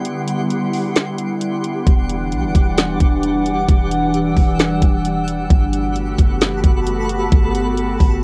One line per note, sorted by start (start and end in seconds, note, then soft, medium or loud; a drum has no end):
0.00 1.83 D3 medium
0.00 5.46 G3 medium
0.00 1.83 B3 medium
0.00 1.83 E4 medium
0.00 5.46 G4 medium
0.00 8.24 F#5 medium
0.00 1.83 C6 medium
0.05 closed hi-hat medium
0.28 closed hi-hat medium
0.50 closed hi-hat medium
0.73 open hi-hat medium
0.96 snare loud
0.96 closed hi-hat medium
1.18 closed hi-hat medium
1.41 closed hi-hat medium
1.64 closed hi-hat medium
1.87 2.34 E1 loud
1.87 5.47 E3 medium
1.87 5.47 D4 medium
1.87 5.47 F#5 medium
1.87 3.67 D6 medium
1.87 kick loud
1.87 closed hi-hat medium
2.09 closed hi-hat medium
2.32 2.45 B1 medium
2.32 closed hi-hat medium
2.43 2.54 E1 medium
2.55 2.98 E1 loud
2.55 kick medium
2.55 closed hi-hat medium
2.78 snare loud
2.78 closed hi-hat medium
3.00 3.66 E1 loud
3.00 kick loud
3.00 closed hi-hat medium
3.23 closed hi-hat medium
3.46 closed hi-hat medium
3.68 4.34 E1 loud
3.68 5.48 E6 medium
3.68 kick loud
3.68 closed hi-hat medium
3.91 closed hi-hat medium
4.14 closed hi-hat medium
4.37 4.80 E1 loud
4.37 kick medium
4.37 open hi-hat medium
4.59 snare loud
4.59 closed hi-hat medium
4.82 5.48 E1 loud
4.82 kick loud
4.82 closed hi-hat medium
5.05 closed hi-hat medium
5.28 closed hi-hat medium
5.50 6.16 G1 loud
5.50 8.24 A3 medium
5.50 8.24 B3 medium
5.50 8.24 F#4 medium
5.50 8.24 G4 medium
5.50 8.24 A4 medium
5.50 8.24 B5 medium
5.50 kick loud
5.50 closed hi-hat medium
5.73 closed hi-hat medium
5.96 closed hi-hat medium
6.19 6.62 F#1 loud
6.19 kick medium
6.19 closed hi-hat medium
6.41 snare loud
6.41 closed hi-hat medium
6.64 7.29 F#1 loud
6.64 kick loud
6.64 closed hi-hat medium
6.87 closed hi-hat medium
7.09 closed hi-hat medium
7.32 7.98 G1 loud
7.32 kick loud
7.32 closed hi-hat medium
7.55 closed hi-hat medium
7.77 closed hi-hat medium
8.00 8.22 G1 loud
8.00 kick medium
8.00 open hi-hat medium